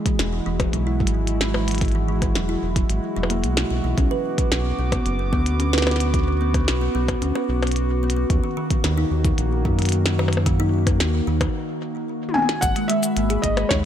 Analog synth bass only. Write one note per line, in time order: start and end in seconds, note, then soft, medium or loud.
0.19 0.41 E1 medium
0.46 0.68 E1 medium
0.73 1.02 B1 loud
1.00 2.37 G#1 medium
2.35 2.57 E1 medium
2.63 2.84 E1 medium
2.90 3.00 G#1 medium
3.17 3.45 E1 medium
3.44 3.65 B1 medium
3.71 3.81 B1 medium
3.84 3.95 B1 medium
3.98 4.08 B1 loud
4.52 4.73 B1 medium
4.79 5.00 B1 medium
5.06 5.34 F#1 loud
5.33 6.69 D2 medium
6.68 6.89 B1 medium
6.95 7.16 B1 medium
7.22 7.33 D2 medium
7.49 8.26 B1 medium
8.30 8.41 D#2 loud
8.84 9.05 D#2 medium
9.11 9.32 D#2 medium
9.38 9.67 A#1 medium
9.65 11.02 F#2 medium
11.00 11.22 D#2 medium
11.27 11.49 D#2 medium
12.62 12.73 G#1 loud
13.17 13.38 G#1 loud
13.44 13.65 G#1 medium
13.71 13.85 D#2 loud